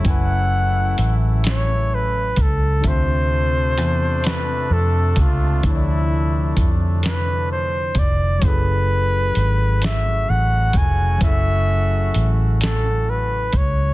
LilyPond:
<<
  \new Staff \with { instrumentName = "Flugelhorn" } { \time 6/8 \key fis \minor \tempo 4. = 43 fis''4 r8 cis''8 b'8 a'8 | c''4. b'8 a'8 f'8 | e'4 r8 b'8 c''8 d''8 | b'4. e''8 fis''8 gis''8 |
e''4 r8 a'8 b'8 cis''8 | }
  \new Staff \with { instrumentName = "Tine electric piano" } { \time 6/8 \key fis \minor <fis cis' e' b' gis''>2. | <c c' d' f' e''>2. | <d f d' e' cis'' d''>2. | <fis cis' e' gis' a'>2. |
<fis cis' e' a' gis''>2. | }
  \new Staff \with { instrumentName = "Horn section" } { \time 6/8 \key fis \minor <cis a e'>2~ <cis a e'>8 r8 | <c a d'>2.~ | <c a d'>2~ <c a d'>8 r8 | r4. <cis a fis'>4.~ |
<cis a fis'>2~ <cis a fis'>8 r8 | }
  \new Staff \with { instrumentName = "Fingered electric bass" } { \clef bass \time 6/8 \key fis \minor fis,,4 a,,4. cis,8 | d,4 e,4 f,8 cis,8 | d,4 f,4. f,,8 | fis,,4 gis,,4 a,,8 eis,,8 |
fis,,4 a,,4. cis,8 | }
  \new DrumStaff \with { instrumentName = "Drums" } \drummode { \time 6/8 <hh bd>4 hh8 <hh sn>4 <hh bd>8 | <hh bd>4 hh8 <hh sn>4 <hh bd>8 | <hh bd>4 <hh bd>8 <hh sn>4 <hh bd>8 | <hh bd>4 hh8 <hh sn>4 <hh bd>8 |
<hh bd>4 hh8 <hh sn>4 <hh bd>8 | }
>>